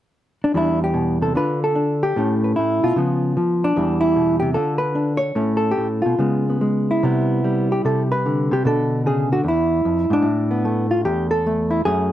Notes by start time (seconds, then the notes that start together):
0.44 D4
0.54 E2 E3 G3 D4 E4
0.84 G4
0.94 B2
1.21 C3 A4
1.35 D3 D4 F4 B4
1.64 A4
1.75 D4
2.03 G4
2.16 A2 A3 C#4
2.44 B4
2.56 A2 E4
2.83 B2 F4
2.96 C#3 F3 B3
3.37 F3
3.64 D4
3.76 E2 E3 G3
4.01 E4
4.16 B2
4.40 C3 G4
4.54 D3 D4 F4 A4
4.78 B4
4.95 D4
5.17 C#5
5.35 A2 A3 C#4
5.57 A4
5.71 G4
5.77 A2
6.02 B2 F4
6.19 C#3 G#3 B3
6.50 B3
6.61 G#3
6.91 E4
7.03 C3 G3 B3
7.44 G3
7.72 G4
7.85 C3 A4
8.12 B4
8.26 D3
8.51 C3 G4
8.65 B2 D3 D4 A4
9.06 C#3 G#4
9.32 D3 F#4
9.43 E2
9.48 E4
9.85 F2
10.10 G#2 D4
10.22 A2
10.51 B3
10.65 A3
10.91 F4
11.05 E2 G4
11.31 A4
11.46 A3
11.71 E4
11.85 F#2 F#3 A3 C#4 G#4